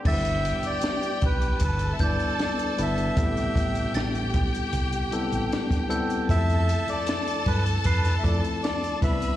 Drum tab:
CC |x---------------|----------------|----------------|
HH |-xxxxxxxxxxxxxxx|xxxxxxxxxxxxxxxx|xxxxxxxxxxxxxxxx|
SD |----o-------o---|----o-------oo--|----o----o--o---|
BD |o-----o-o-o-----|o-o---o------o--|o-----o-o-o---o-|